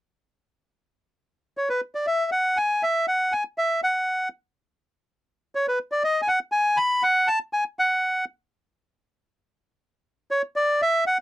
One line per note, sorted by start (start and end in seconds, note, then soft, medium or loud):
1.57 1.69 C#5 soft
1.69 1.81 B4 soft
1.95 2.06 D5 soft
2.07 2.30 E5 medium
2.32 2.58 F#5 medium
2.57 2.83 G#5 medium
2.83 3.06 E5 medium
3.08 3.33 F#5 medium
3.32 3.44 G#5 medium
3.58 3.81 E5 medium
3.83 4.29 F#5 medium
5.55 5.66 C#5 medium
5.68 5.79 B4 medium
5.92 6.03 D5 medium
6.04 6.21 D#5 medium
6.22 6.28 G#5 medium
6.28 6.39 F#5 medium
6.52 6.78 G#5 medium
6.77 7.03 B5 medium
7.03 7.28 F#5 medium
7.28 7.39 A5 medium
7.53 7.64 G#5 medium
7.79 8.25 F#5 medium
10.31 10.42 C#5 medium
10.56 10.81 D5 medium
10.82 11.04 E5 medium
11.07 11.18 F#5 medium